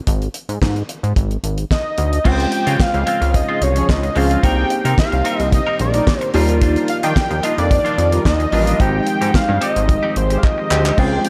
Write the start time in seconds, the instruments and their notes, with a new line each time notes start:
0.07 analog synth bass G#1, kick, closed hi-hat
0.22 closed hi-hat
0.34 closed hi-hat
0.49 analog synth bass G#2, closed hi-hat
0.62 analog synth bass G#2, kick, snare, clap
0.76 closed hi-hat
0.89 closed hi-hat
1.03 analog synth bass G#2, closed hi-hat
1.16 analog synth bass G#1, kick, closed hi-hat
1.31 closed hi-hat
1.44 analog synth bass G#1, closed hi-hat
1.58 closed hi-hat
1.71 analog synth lead D#5, kick, snare, clap
1.98 analog synth bass D2, closed hi-hat
2.13 closed hi-hat
2.24 analog synth bass C#2, string machine C#3 F3 G#3 F4 C5, tine electric piano G#3 C4 C#4 F4 C5, clean electric guitar G#3 C4 F4, analog synth lead G5, kick, crash
2.40 closed hi-hat
2.52 muted clean electric guitar stroke, closed hi-hat
2.67 analog synth bass C#3, clean electric guitar G#3 C4 F4, closed hi-hat
2.80 analog synth lead F5, kick, snare, clap
2.94 analog synth bass C#2, muted clean electric guitar stroke, closed hi-hat
3.07 clean electric guitar G#3 C4 F4, closed hi-hat
3.21 analog synth bass C#2, muted clean electric guitar stroke, closed hi-hat
3.34 analog synth lead D#5, muted clean electric guitar stroke, kick, closed hi-hat
3.49 clean electric guitar G#3 C4 F4
3.61 analog synth bass C2, analog synth lead C#5, muted clean electric guitar stroke, closed hi-hat
3.76 analog polysynth F3 C#4 G#4, muted clean electric guitar stroke, closed hi-hat
3.89 analog synth bass C#2, analog synth lead D#5, muted clean electric guitar stroke, kick, snare, clap
4.03 muted clean electric guitar stroke, closed hi-hat
4.15 analog synth bass C#2, analog polysynth F3 C#4 G#4, clean electric guitar G#3 C4 F4, tine electric piano G#3 C4 C#4 F4 C5, analog synth lead F5, open hi-hat
4.30 clean electric guitar G#3 C4 F4, closed hi-hat
4.43 analog synth bass C2, string machine D#3 G3 A#3 G4, tine electric piano A#3 C4 D#4 G4 C5, clean electric guitar C4 D#4 A#4, analog synth lead G5, kick, closed hi-hat
4.70 muted clean electric guitar stroke, closed hi-hat
4.85 analog synth bass C3, clean electric guitar C4 D#4 A#4, closed hi-hat
4.98 analog synth lead F5, kick, snare, clap
5.12 analog synth bass C2, muted clean electric guitar stroke, closed hi-hat
5.25 clean electric guitar C4 D#4 A#4, closed hi-hat
5.39 analog synth bass C2, muted clean electric guitar stroke, closed hi-hat
5.52 analog synth lead D#5, muted clean electric guitar stroke, kick, closed hi-hat
5.67 clean electric guitar C4 D#4 A#4
5.79 analog synth bass A#1, analog synth lead D5, muted clean electric guitar stroke, closed hi-hat
5.94 analog polysynth G3 D#4 A#4, muted clean electric guitar stroke, closed hi-hat
6.07 muted clean electric guitar stroke, kick, snare, clap
6.20 analog synth lead C5, muted clean electric guitar stroke, closed hi-hat
6.34 analog synth bass D#2, string machine F3 D#4 F4, clean electric guitar G3 D4 F4, analog polysynth G3 F4 A#4, tine electric piano A#3 D#4 F4 G4 D5, open hi-hat
6.49 clean electric guitar G3 D4 F4, closed hi-hat
6.62 clean electric guitar G3 D4 F4, kick, closed hi-hat
6.76 closed hi-hat
6.88 analog synth lead F5, muted clean electric guitar stroke, closed hi-hat
7.03 analog synth bass D#3, clean electric guitar G3 D4 F4, analog synth lead G5, closed hi-hat
7.16 kick, snare, clap
7.30 analog synth bass D#2, muted clean electric guitar stroke, closed hi-hat
7.43 clean electric guitar G3 D4 F4, analog synth lead D#5, closed hi-hat
7.58 analog synth bass F2, analog synth lead D5, muted clean electric guitar stroke, closed hi-hat
7.70 muted clean electric guitar stroke, kick, closed hi-hat
7.85 clean electric guitar G3 D4 F4, closed hi-hat
7.98 analog synth bass F2, muted clean electric guitar stroke, closed hi-hat
8.12 analog polysynth G3 F4 A#4, muted clean electric guitar stroke, closed hi-hat
8.25 analog synth bass D#2, analog synth lead D#5, muted clean electric guitar stroke, kick, snare, clap
8.40 muted clean electric guitar stroke, closed hi-hat
8.52 analog synth bass A1, clean electric guitar G3 D4 F4, analog polysynth G3 F4 A#4, open hi-hat
8.67 clean electric guitar G3 D4 F4, closed hi-hat
8.79 analog synth bass G#1, tine electric piano G#3 C4 D#4 G4 C5, string machine G#3 G4 C5, clean electric guitar C4 D#4 G4, analog synth lead G5, kick, closed hi-hat
9.07 muted clean electric guitar stroke, closed hi-hat
9.21 analog synth bass G#2, clean electric guitar C4 D#4 G4, closed hi-hat
9.34 analog synth lead F5, muted clean electric guitar stroke, kick, snare, clap
9.49 analog synth bass G2, muted clean electric guitar stroke
9.61 clean electric guitar C4 D#4 G4, analog synth lead D#5, closed hi-hat
9.76 analog synth bass G#1, muted clean electric guitar stroke, closed hi-hat
9.88 muted clean electric guitar stroke, kick, closed hi-hat
10.03 clean electric guitar C4 D#4 G4
10.16 analog synth bass G#1, analog synth lead C5, muted clean electric guitar stroke, closed hi-hat
10.30 analog polysynth G#3 G4 C5, muted clean electric guitar stroke, closed hi-hat
10.38 analog synth lead F5
10.43 analog synth lead D#5, muted clean electric guitar stroke, kick, clap
10.58 muted clean electric guitar stroke
10.70 analog synth bass D2, analog polysynth G#3 G4 C5, clean electric guitar C4 D#4 G4, clap
10.85 clean electric guitar C4 D#4 G4, clap
10.97 analog synth bass C#2, string machine C#3 F3 F4, tine electric piano G#3 C4 C#4 F4 C5, clean electric guitar C4 F4 G#4, analog synth lead G5, kick, splash
11.25 muted clean electric guitar stroke, closed hi-hat